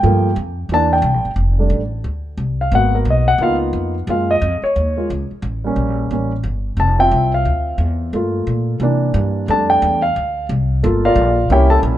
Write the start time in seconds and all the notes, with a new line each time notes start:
Already playing: G5
0.03 G2 F3 A3 A#3
0.36 F2
0.69 E2 E3 A#3
0.73 D4 A5
0.93 G5
1.02 C2
1.14 A#1
1.25 G1
1.36 F1
1.59 G3 A3 D4
1.70 A1
2.04 D2
2.37 C2
2.61 F5
2.72 G#1 A#3 B3 F#4 F#5
2.95 A#4
3.05 B1
3.10 D#5
3.28 F#5
3.38 C#2 A#3 B3 D#4 F4
3.43 F5
3.73 F2
4.07 F#2 G#3 A#3 F4 F5
4.31 D#5
4.42 F2
4.62 C#5, muted upright bass stroke
4.76 D#2
4.97 G#3 A#3 F4
5.10 C#2
5.31 muted upright bass stroke
5.42 A1
5.64 G3 A#3 C#4
5.76 A#1
6.11 A1 G3 A#3 C#4
6.44 G1
6.77 F1 A5
6.99 C4 F4 E5 G5
7.11 C2
7.34 F5
7.45 D2
7.78 E2
8.13 G2 A3 A#3 F4
8.47 A#2
8.80 C3 E3 A#3 D4
9.14 G2
9.48 F2 G3 A3 D4 A5
9.70 G5
9.82 E2
10.02 F5
10.16 D2
10.49 C2
10.83 G1 A#3 F4 A4
11.05 F4 A#4 D5 F5
11.16 A#1
11.50 C2 A#3 C#4 E4 G4 C#5 E5 G5
11.70 A4 A5
11.83 A#1